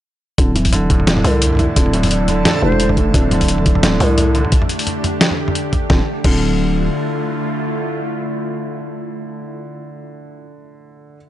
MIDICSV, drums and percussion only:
0, 0, Header, 1, 2, 480
1, 0, Start_track
1, 0, Key_signature, -1, "minor"
1, 0, Tempo, 344828
1, 532, Time_signature, 4, 2, 24, 8
1, 15721, End_track
2, 0, Start_track
2, 0, Title_t, "Drums"
2, 533, Note_on_c, 9, 36, 120
2, 535, Note_on_c, 9, 42, 81
2, 673, Note_off_c, 9, 36, 0
2, 674, Note_off_c, 9, 42, 0
2, 775, Note_on_c, 9, 42, 69
2, 775, Note_on_c, 9, 45, 54
2, 904, Note_on_c, 9, 46, 66
2, 909, Note_on_c, 9, 36, 61
2, 914, Note_off_c, 9, 42, 0
2, 914, Note_off_c, 9, 45, 0
2, 1011, Note_on_c, 9, 42, 81
2, 1011, Note_on_c, 9, 45, 80
2, 1043, Note_off_c, 9, 46, 0
2, 1048, Note_off_c, 9, 36, 0
2, 1150, Note_off_c, 9, 42, 0
2, 1150, Note_off_c, 9, 45, 0
2, 1253, Note_on_c, 9, 42, 66
2, 1255, Note_on_c, 9, 36, 106
2, 1388, Note_on_c, 9, 45, 56
2, 1392, Note_off_c, 9, 42, 0
2, 1394, Note_off_c, 9, 36, 0
2, 1493, Note_on_c, 9, 38, 117
2, 1493, Note_on_c, 9, 42, 80
2, 1527, Note_off_c, 9, 45, 0
2, 1628, Note_on_c, 9, 45, 83
2, 1632, Note_off_c, 9, 38, 0
2, 1632, Note_off_c, 9, 42, 0
2, 1733, Note_on_c, 9, 46, 65
2, 1767, Note_off_c, 9, 45, 0
2, 1872, Note_off_c, 9, 46, 0
2, 1972, Note_on_c, 9, 42, 85
2, 1972, Note_on_c, 9, 45, 25
2, 2013, Note_off_c, 9, 45, 0
2, 2013, Note_on_c, 9, 45, 29
2, 2049, Note_off_c, 9, 45, 0
2, 2049, Note_on_c, 9, 45, 33
2, 2091, Note_off_c, 9, 45, 0
2, 2091, Note_on_c, 9, 45, 37
2, 2112, Note_off_c, 9, 42, 0
2, 2125, Note_off_c, 9, 45, 0
2, 2125, Note_on_c, 9, 45, 41
2, 2158, Note_off_c, 9, 45, 0
2, 2158, Note_on_c, 9, 45, 47
2, 2184, Note_off_c, 9, 45, 0
2, 2184, Note_on_c, 9, 45, 49
2, 2213, Note_off_c, 9, 45, 0
2, 2213, Note_on_c, 9, 42, 38
2, 2213, Note_on_c, 9, 45, 82
2, 2352, Note_off_c, 9, 42, 0
2, 2352, Note_off_c, 9, 45, 0
2, 2455, Note_on_c, 9, 42, 85
2, 2456, Note_on_c, 9, 36, 124
2, 2588, Note_on_c, 9, 45, 53
2, 2594, Note_off_c, 9, 42, 0
2, 2595, Note_off_c, 9, 36, 0
2, 2693, Note_on_c, 9, 42, 66
2, 2727, Note_off_c, 9, 45, 0
2, 2830, Note_on_c, 9, 45, 82
2, 2830, Note_on_c, 9, 46, 65
2, 2832, Note_off_c, 9, 42, 0
2, 2934, Note_on_c, 9, 42, 84
2, 2969, Note_off_c, 9, 45, 0
2, 2969, Note_off_c, 9, 46, 0
2, 3073, Note_off_c, 9, 42, 0
2, 3173, Note_on_c, 9, 42, 65
2, 3173, Note_on_c, 9, 45, 51
2, 3312, Note_off_c, 9, 42, 0
2, 3312, Note_off_c, 9, 45, 0
2, 3414, Note_on_c, 9, 38, 121
2, 3414, Note_on_c, 9, 42, 81
2, 3414, Note_on_c, 9, 45, 77
2, 3553, Note_off_c, 9, 38, 0
2, 3553, Note_off_c, 9, 42, 0
2, 3553, Note_off_c, 9, 45, 0
2, 3788, Note_on_c, 9, 45, 55
2, 3892, Note_on_c, 9, 42, 84
2, 3928, Note_off_c, 9, 45, 0
2, 4028, Note_on_c, 9, 45, 82
2, 4032, Note_off_c, 9, 42, 0
2, 4134, Note_on_c, 9, 36, 68
2, 4135, Note_on_c, 9, 42, 38
2, 4167, Note_off_c, 9, 45, 0
2, 4274, Note_off_c, 9, 36, 0
2, 4274, Note_off_c, 9, 42, 0
2, 4373, Note_on_c, 9, 36, 127
2, 4374, Note_on_c, 9, 42, 81
2, 4374, Note_on_c, 9, 45, 52
2, 4513, Note_off_c, 9, 36, 0
2, 4513, Note_off_c, 9, 42, 0
2, 4513, Note_off_c, 9, 45, 0
2, 4612, Note_on_c, 9, 42, 68
2, 4612, Note_on_c, 9, 45, 78
2, 4746, Note_on_c, 9, 46, 66
2, 4749, Note_on_c, 9, 36, 65
2, 4751, Note_off_c, 9, 42, 0
2, 4751, Note_off_c, 9, 45, 0
2, 4850, Note_on_c, 9, 42, 83
2, 4885, Note_off_c, 9, 46, 0
2, 4888, Note_off_c, 9, 36, 0
2, 4986, Note_on_c, 9, 45, 51
2, 4989, Note_off_c, 9, 42, 0
2, 5092, Note_on_c, 9, 42, 62
2, 5095, Note_on_c, 9, 36, 112
2, 5125, Note_off_c, 9, 45, 0
2, 5225, Note_on_c, 9, 45, 78
2, 5231, Note_off_c, 9, 42, 0
2, 5234, Note_off_c, 9, 36, 0
2, 5333, Note_on_c, 9, 38, 120
2, 5333, Note_on_c, 9, 42, 79
2, 5364, Note_off_c, 9, 45, 0
2, 5472, Note_off_c, 9, 38, 0
2, 5472, Note_off_c, 9, 42, 0
2, 5572, Note_on_c, 9, 45, 51
2, 5572, Note_on_c, 9, 46, 62
2, 5711, Note_off_c, 9, 45, 0
2, 5711, Note_off_c, 9, 46, 0
2, 5814, Note_on_c, 9, 42, 83
2, 5814, Note_on_c, 9, 45, 78
2, 5953, Note_off_c, 9, 42, 0
2, 5953, Note_off_c, 9, 45, 0
2, 6051, Note_on_c, 9, 42, 38
2, 6189, Note_on_c, 9, 45, 52
2, 6190, Note_off_c, 9, 42, 0
2, 6291, Note_on_c, 9, 42, 78
2, 6297, Note_on_c, 9, 36, 127
2, 6328, Note_off_c, 9, 45, 0
2, 6427, Note_on_c, 9, 45, 77
2, 6430, Note_off_c, 9, 42, 0
2, 6436, Note_off_c, 9, 36, 0
2, 6533, Note_on_c, 9, 42, 66
2, 6566, Note_off_c, 9, 45, 0
2, 6669, Note_on_c, 9, 46, 67
2, 6673, Note_off_c, 9, 42, 0
2, 6775, Note_on_c, 9, 42, 78
2, 6775, Note_on_c, 9, 45, 50
2, 6808, Note_off_c, 9, 46, 0
2, 6914, Note_off_c, 9, 42, 0
2, 6914, Note_off_c, 9, 45, 0
2, 7016, Note_on_c, 9, 42, 62
2, 7016, Note_on_c, 9, 45, 75
2, 7155, Note_off_c, 9, 42, 0
2, 7155, Note_off_c, 9, 45, 0
2, 7251, Note_on_c, 9, 38, 123
2, 7251, Note_on_c, 9, 42, 76
2, 7385, Note_on_c, 9, 45, 52
2, 7390, Note_off_c, 9, 38, 0
2, 7390, Note_off_c, 9, 42, 0
2, 7524, Note_off_c, 9, 45, 0
2, 7626, Note_on_c, 9, 45, 78
2, 7730, Note_on_c, 9, 42, 78
2, 7765, Note_off_c, 9, 45, 0
2, 7869, Note_off_c, 9, 42, 0
2, 7972, Note_on_c, 9, 42, 36
2, 7972, Note_on_c, 9, 45, 49
2, 7973, Note_on_c, 9, 36, 65
2, 8111, Note_off_c, 9, 42, 0
2, 8111, Note_off_c, 9, 45, 0
2, 8112, Note_off_c, 9, 36, 0
2, 8210, Note_on_c, 9, 38, 89
2, 8213, Note_on_c, 9, 36, 118
2, 8350, Note_off_c, 9, 38, 0
2, 8352, Note_off_c, 9, 36, 0
2, 8691, Note_on_c, 9, 49, 86
2, 8693, Note_on_c, 9, 36, 113
2, 8830, Note_off_c, 9, 49, 0
2, 8832, Note_off_c, 9, 36, 0
2, 15721, End_track
0, 0, End_of_file